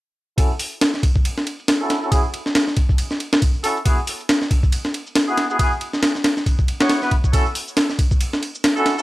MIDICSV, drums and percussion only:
0, 0, Header, 1, 2, 480
1, 0, Start_track
1, 0, Key_signature, 3, "minor"
1, 0, Tempo, 434783
1, 417, Time_signature, 4, 2, 24, 8
1, 9959, End_track
2, 0, Start_track
2, 0, Title_t, "Drums"
2, 417, Note_on_c, 9, 36, 98
2, 418, Note_on_c, 9, 51, 76
2, 419, Note_on_c, 9, 82, 49
2, 527, Note_off_c, 9, 36, 0
2, 529, Note_off_c, 9, 51, 0
2, 529, Note_off_c, 9, 82, 0
2, 559, Note_on_c, 9, 82, 30
2, 657, Note_on_c, 9, 46, 68
2, 670, Note_off_c, 9, 82, 0
2, 767, Note_off_c, 9, 46, 0
2, 797, Note_on_c, 9, 82, 59
2, 899, Note_on_c, 9, 38, 107
2, 899, Note_on_c, 9, 51, 77
2, 908, Note_off_c, 9, 82, 0
2, 1009, Note_off_c, 9, 38, 0
2, 1009, Note_off_c, 9, 51, 0
2, 1038, Note_on_c, 9, 38, 34
2, 1138, Note_on_c, 9, 36, 89
2, 1140, Note_on_c, 9, 51, 63
2, 1149, Note_off_c, 9, 38, 0
2, 1248, Note_off_c, 9, 36, 0
2, 1250, Note_off_c, 9, 51, 0
2, 1276, Note_on_c, 9, 36, 81
2, 1278, Note_on_c, 9, 82, 57
2, 1380, Note_off_c, 9, 82, 0
2, 1380, Note_on_c, 9, 82, 51
2, 1381, Note_on_c, 9, 51, 73
2, 1387, Note_off_c, 9, 36, 0
2, 1491, Note_off_c, 9, 51, 0
2, 1491, Note_off_c, 9, 82, 0
2, 1519, Note_on_c, 9, 38, 43
2, 1620, Note_on_c, 9, 51, 59
2, 1629, Note_off_c, 9, 38, 0
2, 1731, Note_off_c, 9, 51, 0
2, 1756, Note_on_c, 9, 82, 58
2, 1857, Note_on_c, 9, 38, 105
2, 1857, Note_on_c, 9, 51, 80
2, 1867, Note_off_c, 9, 82, 0
2, 1968, Note_off_c, 9, 38, 0
2, 1968, Note_off_c, 9, 51, 0
2, 2000, Note_on_c, 9, 82, 30
2, 2097, Note_on_c, 9, 38, 49
2, 2097, Note_on_c, 9, 51, 63
2, 2110, Note_off_c, 9, 82, 0
2, 2208, Note_off_c, 9, 38, 0
2, 2208, Note_off_c, 9, 51, 0
2, 2242, Note_on_c, 9, 82, 59
2, 2337, Note_on_c, 9, 36, 100
2, 2338, Note_on_c, 9, 51, 78
2, 2343, Note_off_c, 9, 82, 0
2, 2343, Note_on_c, 9, 82, 50
2, 2448, Note_off_c, 9, 36, 0
2, 2448, Note_off_c, 9, 51, 0
2, 2453, Note_off_c, 9, 82, 0
2, 2480, Note_on_c, 9, 82, 30
2, 2580, Note_on_c, 9, 51, 59
2, 2590, Note_off_c, 9, 82, 0
2, 2690, Note_off_c, 9, 51, 0
2, 2716, Note_on_c, 9, 38, 39
2, 2720, Note_on_c, 9, 82, 59
2, 2817, Note_off_c, 9, 38, 0
2, 2817, Note_on_c, 9, 38, 107
2, 2817, Note_on_c, 9, 51, 80
2, 2831, Note_off_c, 9, 82, 0
2, 2927, Note_off_c, 9, 38, 0
2, 2927, Note_off_c, 9, 51, 0
2, 2953, Note_on_c, 9, 38, 34
2, 2960, Note_on_c, 9, 82, 30
2, 3053, Note_on_c, 9, 51, 63
2, 3056, Note_on_c, 9, 36, 88
2, 3063, Note_off_c, 9, 38, 0
2, 3070, Note_off_c, 9, 82, 0
2, 3164, Note_off_c, 9, 51, 0
2, 3166, Note_off_c, 9, 36, 0
2, 3194, Note_on_c, 9, 36, 84
2, 3199, Note_on_c, 9, 82, 57
2, 3292, Note_on_c, 9, 51, 73
2, 3300, Note_off_c, 9, 82, 0
2, 3300, Note_on_c, 9, 82, 51
2, 3304, Note_off_c, 9, 36, 0
2, 3403, Note_off_c, 9, 51, 0
2, 3410, Note_off_c, 9, 82, 0
2, 3431, Note_on_c, 9, 38, 35
2, 3436, Note_on_c, 9, 82, 29
2, 3535, Note_on_c, 9, 51, 62
2, 3541, Note_off_c, 9, 38, 0
2, 3546, Note_off_c, 9, 82, 0
2, 3646, Note_off_c, 9, 51, 0
2, 3674, Note_on_c, 9, 38, 108
2, 3675, Note_on_c, 9, 82, 58
2, 3776, Note_on_c, 9, 51, 71
2, 3777, Note_on_c, 9, 36, 94
2, 3782, Note_off_c, 9, 82, 0
2, 3782, Note_on_c, 9, 82, 49
2, 3784, Note_off_c, 9, 38, 0
2, 3886, Note_off_c, 9, 51, 0
2, 3887, Note_off_c, 9, 36, 0
2, 3892, Note_off_c, 9, 82, 0
2, 3920, Note_on_c, 9, 82, 29
2, 4016, Note_on_c, 9, 46, 66
2, 4030, Note_off_c, 9, 82, 0
2, 4126, Note_off_c, 9, 46, 0
2, 4157, Note_on_c, 9, 82, 58
2, 4256, Note_on_c, 9, 51, 82
2, 4257, Note_on_c, 9, 36, 97
2, 4259, Note_off_c, 9, 82, 0
2, 4259, Note_on_c, 9, 82, 48
2, 4367, Note_off_c, 9, 51, 0
2, 4368, Note_off_c, 9, 36, 0
2, 4370, Note_off_c, 9, 82, 0
2, 4400, Note_on_c, 9, 82, 30
2, 4497, Note_on_c, 9, 46, 72
2, 4510, Note_off_c, 9, 82, 0
2, 4607, Note_off_c, 9, 46, 0
2, 4639, Note_on_c, 9, 82, 59
2, 4738, Note_on_c, 9, 38, 106
2, 4738, Note_on_c, 9, 51, 80
2, 4749, Note_off_c, 9, 82, 0
2, 4848, Note_off_c, 9, 38, 0
2, 4848, Note_off_c, 9, 51, 0
2, 4876, Note_on_c, 9, 38, 35
2, 4876, Note_on_c, 9, 82, 30
2, 4976, Note_on_c, 9, 36, 89
2, 4977, Note_on_c, 9, 51, 65
2, 4986, Note_off_c, 9, 38, 0
2, 4986, Note_off_c, 9, 82, 0
2, 5087, Note_off_c, 9, 36, 0
2, 5087, Note_off_c, 9, 51, 0
2, 5112, Note_on_c, 9, 82, 56
2, 5114, Note_on_c, 9, 36, 81
2, 5215, Note_on_c, 9, 51, 74
2, 5218, Note_off_c, 9, 82, 0
2, 5218, Note_on_c, 9, 82, 50
2, 5224, Note_off_c, 9, 36, 0
2, 5326, Note_off_c, 9, 51, 0
2, 5328, Note_off_c, 9, 82, 0
2, 5352, Note_on_c, 9, 38, 44
2, 5355, Note_on_c, 9, 82, 27
2, 5456, Note_on_c, 9, 51, 60
2, 5462, Note_off_c, 9, 38, 0
2, 5465, Note_off_c, 9, 82, 0
2, 5567, Note_off_c, 9, 51, 0
2, 5593, Note_on_c, 9, 82, 59
2, 5691, Note_on_c, 9, 38, 109
2, 5691, Note_on_c, 9, 51, 81
2, 5697, Note_off_c, 9, 82, 0
2, 5697, Note_on_c, 9, 82, 46
2, 5801, Note_off_c, 9, 38, 0
2, 5801, Note_off_c, 9, 51, 0
2, 5807, Note_off_c, 9, 82, 0
2, 5835, Note_on_c, 9, 82, 29
2, 5934, Note_on_c, 9, 38, 49
2, 5934, Note_on_c, 9, 51, 62
2, 5945, Note_off_c, 9, 82, 0
2, 6044, Note_off_c, 9, 38, 0
2, 6044, Note_off_c, 9, 51, 0
2, 6075, Note_on_c, 9, 82, 61
2, 6176, Note_on_c, 9, 36, 98
2, 6176, Note_on_c, 9, 51, 76
2, 6178, Note_off_c, 9, 82, 0
2, 6178, Note_on_c, 9, 82, 46
2, 6286, Note_off_c, 9, 36, 0
2, 6286, Note_off_c, 9, 51, 0
2, 6288, Note_off_c, 9, 82, 0
2, 6317, Note_on_c, 9, 82, 28
2, 6414, Note_on_c, 9, 51, 60
2, 6427, Note_off_c, 9, 82, 0
2, 6525, Note_off_c, 9, 51, 0
2, 6552, Note_on_c, 9, 38, 40
2, 6555, Note_on_c, 9, 82, 58
2, 6653, Note_off_c, 9, 38, 0
2, 6653, Note_on_c, 9, 38, 105
2, 6653, Note_on_c, 9, 51, 81
2, 6656, Note_off_c, 9, 82, 0
2, 6656, Note_on_c, 9, 82, 46
2, 6763, Note_off_c, 9, 38, 0
2, 6763, Note_off_c, 9, 51, 0
2, 6767, Note_off_c, 9, 82, 0
2, 6792, Note_on_c, 9, 38, 33
2, 6796, Note_on_c, 9, 82, 29
2, 6892, Note_off_c, 9, 38, 0
2, 6892, Note_on_c, 9, 38, 95
2, 6892, Note_on_c, 9, 51, 74
2, 6906, Note_off_c, 9, 82, 0
2, 7003, Note_off_c, 9, 38, 0
2, 7003, Note_off_c, 9, 51, 0
2, 7033, Note_on_c, 9, 38, 31
2, 7036, Note_on_c, 9, 82, 54
2, 7135, Note_off_c, 9, 82, 0
2, 7135, Note_on_c, 9, 36, 74
2, 7135, Note_on_c, 9, 82, 48
2, 7136, Note_on_c, 9, 51, 53
2, 7144, Note_off_c, 9, 38, 0
2, 7245, Note_off_c, 9, 36, 0
2, 7245, Note_off_c, 9, 82, 0
2, 7246, Note_off_c, 9, 51, 0
2, 7273, Note_on_c, 9, 82, 26
2, 7274, Note_on_c, 9, 36, 74
2, 7377, Note_on_c, 9, 51, 60
2, 7383, Note_off_c, 9, 82, 0
2, 7384, Note_off_c, 9, 36, 0
2, 7487, Note_off_c, 9, 51, 0
2, 7513, Note_on_c, 9, 38, 103
2, 7515, Note_on_c, 9, 82, 53
2, 7612, Note_off_c, 9, 38, 0
2, 7612, Note_on_c, 9, 38, 94
2, 7612, Note_on_c, 9, 51, 73
2, 7617, Note_off_c, 9, 82, 0
2, 7617, Note_on_c, 9, 82, 46
2, 7723, Note_off_c, 9, 38, 0
2, 7723, Note_off_c, 9, 51, 0
2, 7728, Note_off_c, 9, 82, 0
2, 7752, Note_on_c, 9, 38, 33
2, 7754, Note_on_c, 9, 82, 28
2, 7854, Note_on_c, 9, 51, 53
2, 7855, Note_on_c, 9, 36, 79
2, 7862, Note_off_c, 9, 38, 0
2, 7864, Note_off_c, 9, 82, 0
2, 7964, Note_off_c, 9, 51, 0
2, 7965, Note_off_c, 9, 36, 0
2, 7994, Note_on_c, 9, 36, 76
2, 7995, Note_on_c, 9, 82, 58
2, 8096, Note_off_c, 9, 36, 0
2, 8096, Note_on_c, 9, 36, 101
2, 8097, Note_on_c, 9, 51, 80
2, 8099, Note_off_c, 9, 82, 0
2, 8099, Note_on_c, 9, 82, 45
2, 8207, Note_off_c, 9, 36, 0
2, 8207, Note_off_c, 9, 51, 0
2, 8209, Note_off_c, 9, 82, 0
2, 8238, Note_on_c, 9, 82, 28
2, 8338, Note_on_c, 9, 46, 74
2, 8348, Note_off_c, 9, 82, 0
2, 8448, Note_off_c, 9, 46, 0
2, 8476, Note_on_c, 9, 82, 55
2, 8575, Note_on_c, 9, 38, 104
2, 8575, Note_on_c, 9, 51, 82
2, 8580, Note_off_c, 9, 82, 0
2, 8580, Note_on_c, 9, 82, 47
2, 8686, Note_off_c, 9, 38, 0
2, 8686, Note_off_c, 9, 51, 0
2, 8690, Note_off_c, 9, 82, 0
2, 8718, Note_on_c, 9, 38, 34
2, 8719, Note_on_c, 9, 82, 29
2, 8817, Note_on_c, 9, 36, 88
2, 8819, Note_on_c, 9, 51, 66
2, 8828, Note_off_c, 9, 38, 0
2, 8829, Note_off_c, 9, 82, 0
2, 8928, Note_off_c, 9, 36, 0
2, 8929, Note_off_c, 9, 51, 0
2, 8956, Note_on_c, 9, 36, 85
2, 8958, Note_on_c, 9, 82, 52
2, 9059, Note_off_c, 9, 82, 0
2, 9059, Note_on_c, 9, 51, 76
2, 9059, Note_on_c, 9, 82, 47
2, 9066, Note_off_c, 9, 36, 0
2, 9169, Note_off_c, 9, 51, 0
2, 9169, Note_off_c, 9, 82, 0
2, 9199, Note_on_c, 9, 82, 25
2, 9201, Note_on_c, 9, 38, 46
2, 9303, Note_on_c, 9, 51, 61
2, 9310, Note_off_c, 9, 82, 0
2, 9311, Note_off_c, 9, 38, 0
2, 9413, Note_off_c, 9, 51, 0
2, 9438, Note_on_c, 9, 82, 54
2, 9538, Note_off_c, 9, 82, 0
2, 9538, Note_on_c, 9, 82, 45
2, 9539, Note_on_c, 9, 38, 104
2, 9539, Note_on_c, 9, 51, 83
2, 9649, Note_off_c, 9, 38, 0
2, 9649, Note_off_c, 9, 51, 0
2, 9649, Note_off_c, 9, 82, 0
2, 9679, Note_on_c, 9, 82, 28
2, 9779, Note_on_c, 9, 38, 53
2, 9779, Note_on_c, 9, 51, 63
2, 9789, Note_off_c, 9, 82, 0
2, 9889, Note_off_c, 9, 38, 0
2, 9889, Note_off_c, 9, 51, 0
2, 9920, Note_on_c, 9, 82, 57
2, 9959, Note_off_c, 9, 82, 0
2, 9959, End_track
0, 0, End_of_file